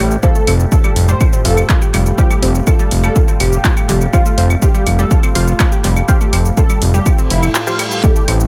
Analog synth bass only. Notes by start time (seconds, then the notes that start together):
0.00 A1
0.47 F1
0.96 F1
1.45 F1
1.94 F1
2.43 F1
2.91 F1
3.40 F1
3.89 F1
4.38 F1
4.86 F1
5.35 F1
5.84 F1
6.33 F1
6.82 F1
7.30 F1
8.28 A1